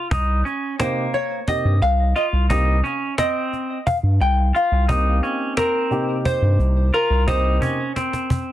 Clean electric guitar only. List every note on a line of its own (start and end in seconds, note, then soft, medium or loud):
0.11 0.41 D#4 medium
0.45 0.75 C#4 medium
0.80 1.39 A#3 medium
2.16 2.46 F4 medium
2.50 2.80 D#4 medium
2.84 3.14 C#4 medium
3.18 3.78 C4 medium
4.55 4.84 F4 medium
4.89 5.18 D#4 medium
5.23 5.53 C#4 medium
5.57 6.17 C4 medium
6.94 7.23 F4 medium
7.28 7.57 D#4 loud
7.62 7.92 C#4 medium
7.96 8.52 C4 medium